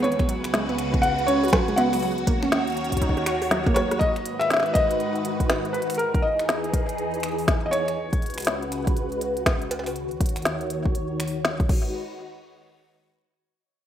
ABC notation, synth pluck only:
X:1
M:4/4
L:1/16
Q:"Swing 16ths" 1/4=121
K:G#m
V:1 name="Synth pluck"
B, F, F, z G, B, z4 C F F, G, B, F, | F, z A, C z4 D F F F F, A, F, z | z16 | z16 |
z16 | z16 | z16 |]